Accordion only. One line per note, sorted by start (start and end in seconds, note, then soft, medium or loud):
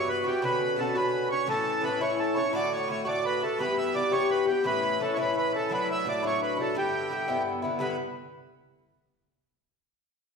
0.09 0.26 B4 medium
0.27 0.44 G4 medium
0.44 0.80 B4 medium
0.79 0.96 A4 medium
0.96 1.29 B4 medium
1.32 1.48 C#5 loud
1.50 1.85 A4 loud
1.84 2.02 B4 medium
2.02 2.19 C#5 medium
2.19 2.37 A4 medium
2.36 2.52 C#5 medium
2.55 2.72 D5 medium
2.73 2.88 C#5 medium
2.91 3.08 C#5 medium
3.08 3.25 D5 medium
3.26 3.43 B4 medium
3.43 3.58 A4 medium
3.60 3.77 B4 medium
3.78 3.95 E5 medium
3.95 4.12 D5 medium
4.12 4.30 C#5 medium
4.31 4.46 B4 medium
4.48 4.65 G4 medium
4.66 5.01 B4 medium
5.02 5.14 A4 medium
5.13 5.17 C#5 medium
5.20 5.36 B4 medium
5.38 5.52 B4 medium
5.55 5.72 A4 medium
5.73 5.89 B4 medium
5.91 6.07 E5 medium
6.09 6.25 D5 medium
6.26 6.41 C#5 medium
6.42 6.58 B4 medium
6.60 6.75 A4 medium
6.78 7.43 G4 medium
7.80 7.97 B4 medium